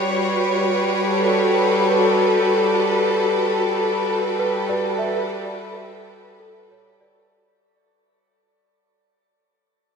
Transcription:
Already playing: string section G3 F#4 B4 C#5
1.04 string section A4
4.39 celesta B4
4.69 celesta D5
4.99 celesta E5
6.40 celesta A4
6.71 celesta C#5
7.01 celesta D5

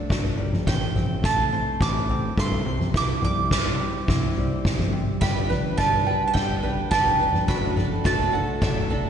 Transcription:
Already playing: steel-string acoustic guitar A3 D4 A4
0.09 picked electric bass G1, steel-string acoustic guitar F#3, kick
0.25 floor tom
0.37 steel-string acoustic guitar G3
0.53 mid tom
0.66 picked electric bass A1, steel-string acoustic guitar A2, mandolin G5, kick, floor tom
0.96 steel-string acoustic guitar C4, floor tom, mid tom
1.23 steel-string acoustic guitar A3, mandolin A5, kick
1.38 floor tom
1.52 steel-string acoustic guitar C5
1.80 picked electric bass A1, steel-string acoustic guitar E3, mandolin D6, kick, floor tom
2.09 steel-string acoustic guitar C4, floor tom
2.37 picked electric bass G2, steel-string acoustic guitar A3, mandolin C6, kick
2.52 floor tom
2.65 picked electric bass C2, steel-string acoustic guitar C3
2.80 mid tom
2.94 steel-string acoustic guitar E4, mandolin D6, kick, floor tom
3.22 steel-string acoustic guitar G3, mandolin D6, floor tom, mid tom
3.51 steel-string acoustic guitar C5, mandolin D6, kick, snare
3.66 floor tom
3.79 steel-string acoustic guitar G3
4.08 picked electric bass C2, steel-string acoustic guitar E4, kick, floor tom, mid tom
4.36 steel-string acoustic guitar G3, floor tom
4.65 picked electric bass G#1, kick
4.79 floor tom, mid tom
4.93 steel-string acoustic guitar C3
5.21 picked electric bass G1, steel-string acoustic guitar G2 G3 D4 G4 B4, ukulele G4, mandolin B5, kick, floor tom
5.49 steel-string acoustic guitar D4 G4 B4, ukulele B4, floor tom, mid tom
5.77 steel-string acoustic guitar G3 D4 G4 B4, ukulele D5, mandolin A5, kick
5.93 floor tom
6.06 steel-string acoustic guitar D4 G4 B4, ukulele G5
6.28 mandolin A5
6.33 picked electric bass G1, steel-string acoustic guitar D3 G3 D4 G4 B4, ukulele D5, mandolin G5, kick, floor tom
6.62 steel-string acoustic guitar D4 G4 B4, ukulele B4, floor tom
6.91 picked electric bass F1, steel-string acoustic guitar G3 D4 G4 B4, ukulele G4, mandolin A5, kick
7.05 floor tom
7.20 steel-string acoustic guitar D4 G4 B4, ukulele B4
7.34 mid tom
7.48 picked electric bass F#1, steel-string acoustic guitar F#3 A3 D4 F#4 A4, ukulele F#4, mandolin B5, kick, floor tom
7.76 steel-string acoustic guitar D4 F#4 A4, ukulele A4, floor tom, mid tom
8.04 steel-string acoustic guitar F#3 A3 D4 F#4 A4, ukulele D5, mandolin A5, kick
8.19 floor tom
8.32 steel-string acoustic guitar D4 F#4 A4, ukulele F#5
8.61 picked electric bass F#1, steel-string acoustic guitar F#3 A3 D4 F#4 A4, ukulele D5, mandolin E5, kick, floor tom
8.89 steel-string acoustic guitar D4 F#4 A4, ukulele A4, floor tom

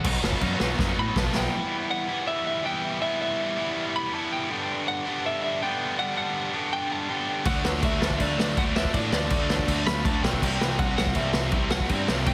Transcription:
0.04 picked electric bass B1, distorted electric guitar B2 F#3 B3 D#4, kick, crash
0.23 picked electric bass F#1, distorted electric guitar B2 F#3 B3 D#4, snare
0.32 kick
0.41 picked electric bass F#2, distorted electric guitar B2 F#3 B3 D#4, kick, crash
0.60 picked electric bass B1, distorted electric guitar B2 F#3 B3 D#4, snare
0.79 picked electric bass F#2, distorted electric guitar B2 F#3 B3 D#4, kick, snare
0.98 picked electric bass A2, distorted electric guitar B2 F#3 B3 D#4, lead electric guitar B5
1.16 picked electric bass B1, distorted electric guitar B2 F#3 B3 D#4, lead electric guitar A5, kick, snare
1.34 picked electric bass B1, distorted electric guitar B2 F#3 B3 D#4, lead electric guitar G5, snare
1.53 distorted electric guitar E3 G3 B3 E4
1.91 lead electric guitar F#5
2.08 distorted electric guitar E3 G3 B3 E4
2.27 lead electric guitar E5
2.47 lead electric guitar E5
2.64 distorted electric guitar E3 G3 B3 E4, lead electric guitar G5
3.01 distorted electric guitar E3 G3 B3 E4, lead electric guitar E5
3.22 lead electric guitar E5
3.57 distorted electric guitar E3 G3 B3 E4
3.96 lead electric guitar B5
4.12 distorted electric guitar E3 G3 B3 E4, lead electric guitar A5
4.32 lead electric guitar G5
4.50 distorted electric guitar G2 D3 G3 B3 D4
4.88 lead electric guitar F#5
5.05 distorted electric guitar G2 D3 G3 B3 D4
5.26 lead electric guitar E5
5.43 lead electric guitar E5
5.61 distorted electric guitar G2 D3 G3 B3 D4, lead electric guitar G5
5.98 distorted electric guitar G2 D3 G3 B3 D4, lead electric guitar F#5
6.17 lead electric guitar F#5
6.53 distorted electric guitar G2 D3 G3 B3 D4
6.73 lead electric guitar G5
6.92 lead electric guitar A5
7.09 distorted electric guitar G2 D3 G3 B3 D4, lead electric guitar G5
7.45 picked electric bass D2, distorted electric guitar D3 F#3 A3 D4, lead electric guitar F#5, kick, crash
7.65 picked electric bass D2, snare
7.82 picked electric bass D2, lead electric guitar E5, kick, crash
8.01 picked electric bass D2, distorted electric guitar D3 F#3 A3 D4, snare
8.11 kick
8.20 picked electric bass D2, lead electric guitar D5, kick, crash
8.38 picked electric bass D2, lead electric guitar D5, snare
8.57 picked electric bass D2, distorted electric guitar D3 F#3 A3 D4, lead electric guitar F#5, kick, crash
8.75 distorted electric guitar D3 A3 D4, lead electric guitar E5, snare
8.85 kick
8.94 picked electric bass A2, distorted electric guitar D3 F#3 A3 D4, lead electric guitar D5, kick, crash
9.12 picked electric bass D2, lead electric guitar D5, snare
9.30 picked electric bass D2, kick, crash
9.50 distorted electric guitar D3 F#3 A3 D4, snare
9.59 kick
9.68 picked electric bass D2, kick, crash
9.86 picked electric bass D2, lead electric guitar B5, snare
10.05 picked electric bass D2, distorted electric guitar D3 F#3 A3, lead electric guitar A5, kick, crash
10.09 distorted electric guitar D4
10.23 picked electric bass B1, distorted electric guitar D3 A3 D4, lead electric guitar G5, snare
10.33 kick
10.42 picked electric bass C2, distorted electric guitar C3 G3 C4 E4, kick, crash
10.61 picked electric bass C2, snare
10.79 picked electric bass C2, lead electric guitar F#5, kick, crash
10.97 picked electric bass C2, distorted electric guitar C3 G3 C4 E4, lead electric guitar F#5, snare
11.06 kick
11.15 picked electric bass C2, lead electric guitar E5, kick, crash
11.33 picked electric bass C2, snare
11.52 picked electric bass C2, distorted electric guitar C3 G3 C4 E4, kick, crash
11.70 distorted electric guitar C3 G3 C4, lead electric guitar F#5, snare
11.80 kick
11.89 picked electric bass G2, distorted electric guitar C3 G3 C4 E4, lead electric guitar G5, kick, crash
12.08 picked electric bass C2, snare
12.26 picked electric bass C2, lead electric guitar G5, kick, crash

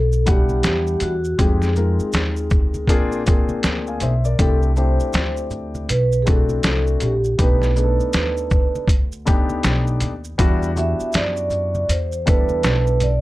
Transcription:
Already playing: upright bass B1, vibraphone A4
0.12 maracas
0.25 grand piano F#3 B3 D4 E4 F#5, vibraphone G4, kick, closed hi-hat, high conga, shaker, maracas
0.32 grand piano G3
0.49 high conga, maracas
0.63 upright bass E2, snare, closed hi-hat, maracas
0.87 maracas
1.00 upright bass E2, vibraphone F#4, closed hi-hat, low conga, shaker, maracas
1.25 maracas
1.38 upright bass F2, grand piano G#3 C4 D#4 F4 G4, vibraphone G#4, kick, closed hi-hat, maracas
1.62 snare, maracas
1.75 grand piano G#3 C4 D#4 F4 A#4, high conga, shaker, maracas
1.99 muted upright bass stroke, maracas
2.12 upright bass D#2, snare, closed hi-hat, maracas
2.37 maracas
2.50 kick, low conga, maracas, shaker
2.74 high conga, maracas
2.87 upright bass A#1, grand piano A#3 C4 D4 F4 G#4, kick, closed hi-hat, low conga, maracas
3.12 maracas
3.26 grand piano A#3 C4 D4 F4 G#4, kick, closed hi-hat, high conga, maracas, shaker
3.49 high conga, maracas
3.63 upright bass D2, snare, closed hi-hat, maracas
3.87 grand piano F5 G#5, maracas
4.00 upright bass B1, grand piano C5 E5, closed hi-hat, low conga, shaker, maracas
4.25 grand piano A#4 D5, maracas
4.39 upright bass C2, grand piano A3 C4 D4 E4 G4, vibraphone A4, kick, closed hi-hat, maracas
4.63 maracas
4.76 grand piano A3 C4 D4 E4 G4, vibraphone C5, high conga, shaker, maracas
4.99 muted upright bass stroke, maracas
5.13 upright bass D2, snare, closed hi-hat, maracas
5.37 maracas
5.50 low conga, shaker, maracas
5.75 high conga, maracas
5.89 upright bass B1, vibraphone B4, closed hi-hat, low conga, maracas
6.12 maracas
6.22 grand piano A3 C4 D4, vibraphone G#4
6.27 grand piano E4 F#4, vibraphone A4, kick, closed hi-hat, high conga, maracas, shaker
6.49 high conga, maracas
6.63 upright bass C2, snare, closed hi-hat, maracas
6.87 maracas
7.00 upright bass A#1, vibraphone G4, closed hi-hat, low conga, shaker, maracas
7.24 maracas
7.38 upright bass B1, grand piano A3 B3 D4 D#4 G4, vibraphone B4, kick, closed hi-hat, maracas
7.62 snare, maracas
7.75 grand piano A3 B3 D4 D#4 G#4, high conga, shaker, maracas
7.84 grand piano A4
7.99 muted upright bass stroke, maracas
8.13 upright bass D#2, snare, closed hi-hat, maracas
8.37 maracas
8.50 kick, low conga, shaker, maracas
8.75 high conga, maracas
8.88 upright bass D2, kick, closed hi-hat, low conga, maracas
9.12 maracas
9.25 grand piano A3 B3 D4 D#4 G4, kick, closed hi-hat, high conga, shaker, maracas
9.49 high conga, maracas
9.63 upright bass B1, snare, closed hi-hat, maracas
9.87 maracas
10.00 upright bass D#2, closed hi-hat, low conga, shaker, maracas
10.24 maracas
10.38 upright bass E2, grand piano G3 B3 D4 E4 F#4, kick, closed hi-hat, maracas
10.63 maracas
10.75 grand piano B3 D4 E4 F#4 G4, vibraphone E5, high conga, shaker, maracas
11.00 muted upright bass stroke, maracas
11.13 upright bass F#2, vibraphone D5, snare, closed hi-hat, maracas
11.37 maracas
11.50 low conga, maracas, shaker
11.75 high conga, maracas
11.89 upright bass E2, vibraphone C5, closed hi-hat, low conga, maracas
12.12 maracas
12.26 grand piano G3 B3 D4 E4 A4, vibraphone B4, kick, closed hi-hat, high conga, shaker, maracas
12.49 high conga, maracas
12.63 upright bass B1, snare, closed hi-hat, maracas
12.87 maracas
13.00 vibraphone D5, closed hi-hat, low conga, shaker, maracas

